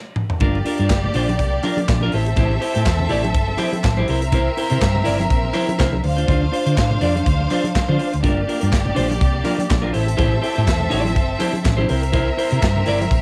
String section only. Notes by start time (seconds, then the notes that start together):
0.41 A#3 G4 D5
2.13 C4 A4 E5
4.08 C4 A#4 E5
6.05 D4 C5 F5
8.22 A#3 G4 D5
9.96 C4 A4 E5
11.89 C4 A#4 E5